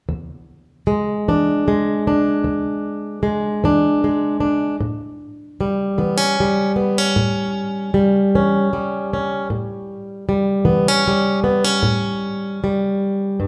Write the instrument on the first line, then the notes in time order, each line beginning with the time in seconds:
steel-string acoustic guitar
0.09 E2
0.87 G#3
1.28 E3 D4
1.68 G#3
2.07 D4
2.44 E2
3.23 G#3
3.64 E3 D4
4.04 G#3
4.40 D4
4.81 A2
5.61 G3
5.98 E3 B3
6.17 C#4
6.40 G3
6.76 B3
6.98 C#4
7.16 A2
7.94 G3
8.35 E3 C#4
8.73 G3
9.13 C#4
9.50 A2
10.29 G3
10.65 E3 B3
10.88 C#4
11.08 G3
11.44 B3
11.64 C#4
11.83 A2
12.64 G3
13.40 G2